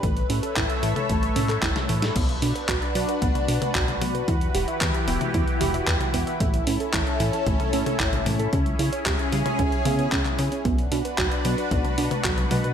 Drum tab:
CC |----------------|x---------------|----------------|----------------|
HH |xxoxxxoxxxoxxxox|xxoxxxoxxxoxxxox|xxoxxxoxxxoxxxox|xxoxxxoxxxoxxxox|
CP |----x------xx---|----x-------x---|----x-------x---|----x-------x---|
SD |------------oo-o|----------------|----------------|----------------|
T1 |-------o--o--o--|---------o-o-oo-|-------o--o--o--|---------o-o-oo-|
BD |o---o---o---o---|o---o---o---o---|o---o---o---o---|o---o---o---o---|

CC |----------------|----------------|
HH |xxoxxxoxxxoxxxox|xxoxxxoxxxoxxxox|
CP |----x-------xx--|----x-------x---|
SD |----------------|----------------|
T1 |-------o--o--o--|---------o-o-oo-|
BD |o---o---o---o---|o---o---o---o---|